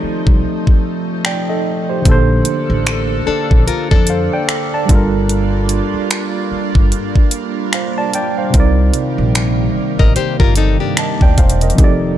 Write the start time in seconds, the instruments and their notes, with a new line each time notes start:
Already playing: tine electric piano F3 C4 D#4 G4 A4 D5, ambient pad F3 A3 D#4
0.03 muted upright bass stroke
0.27 upright bass C2, kick
0.67 kick
1.25 tine electric piano D5 G5, finger snap
1.49 tine electric piano A4 D#5
1.90 tine electric piano G4 C5
2.02 upright bass A#1, tine electric piano D3 A#3, kick, closed hi-hat
2.06 ambient pad A#3 D4 A4, tine electric piano D4 A4
2.11 tine electric piano C5
2.45 closed hi-hat
2.70 upright bass A1
2.87 finger snap, closed hi-hat
3.27 nylon-string guitar D4 A4, muted upright bass stroke
3.51 upright bass A#1, kick
3.67 nylon-string guitar F4 A#4, muted upright bass stroke, closed hi-hat
3.91 upright bass F2, nylon-string guitar D4 A4, kick
4.07 tine electric piano C5 F5, closed hi-hat
4.33 tine electric piano D5 G5
4.49 finger snap, closed hi-hat
4.74 tine electric piano D5 A5
4.86 upright bass G1, tine electric piano G3 D4, kick, closed hi-hat
4.90 ambient pad G3 A#3 F4, tine electric piano F4 A4
4.95 tine electric piano A#4
5.29 closed hi-hat
5.69 closed hi-hat
5.94 muted upright bass stroke
6.11 finger snap, closed hi-hat
6.52 muted upright bass stroke
6.75 upright bass G1, kick
6.92 closed hi-hat
7.16 kick
7.31 closed hi-hat
7.73 tine electric piano C5 F5, finger snap, closed hi-hat
7.98 tine electric piano D5 A5
8.13 tine electric piano D5 G5, closed hi-hat
8.38 tine electric piano C5 F5
8.50 tine electric piano C3 C4, closed hi-hat
8.54 upright bass C2, ambient pad C3 D#3 A#3, tine electric piano D#4 A#4, kick
8.60 tine electric piano D5
8.94 closed hi-hat
9.18 upright bass A#1
9.35 finger snap, closed hi-hat
9.76 muted upright bass stroke
9.99 upright bass A1, nylon-string guitar A#4 D#5, kick
10.16 nylon-string guitar G4 C5, muted upright bass stroke, closed hi-hat
10.40 upright bass G1, nylon-string guitar F4 A#4, kick
10.56 nylon-string guitar D#4 A4, closed hi-hat
10.80 nylon-string guitar D4 G4
10.97 tine electric piano D#5 A5, finger snap, closed hi-hat
11.21 upright bass D2, tine electric piano D5 G5, kick
11.38 upright bass E1, tine electric piano C5 F5, kick, closed hi-hat
11.50 closed hi-hat
11.61 tine electric piano A#4 D#5, closed hi-hat
11.70 closed hi-hat
11.74 tine electric piano F3 C4 D#4
11.78 upright bass F1, ambient pad F3 A4, tine electric piano G4 A4, kick, closed hi-hat
11.84 tine electric piano D5